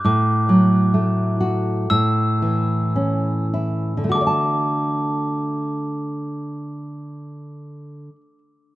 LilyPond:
<<
  \new Staff \with { instrumentName = "Glockenspiel" } { \time 4/4 \key d \major \tempo 4 = 52 d'''4. r8 e'''4. r8 | d'''1 | }
  \new Staff \with { instrumentName = "Nylon-string guitar" } { \time 4/4 \key d \major a,8 fis8 a8 fis'8 a,8 e8 cis'8 e'8 | <d a fis' a' d'' a''>1 | }
>>